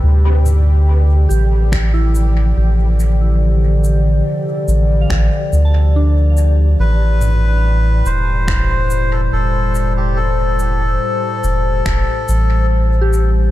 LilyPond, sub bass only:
\new Staff \with { instrumentName = "Sub bass" } { \clef bass \time 4/4 \key d \minor \tempo 4 = 71 d,4. a,,4. a,,4~ | a,,4 r8 a,,8 a,,8 d,4. | a,,4. e,,4. e,,4~ | e,,4 r8 e,,8 e,,8 a,,4. | }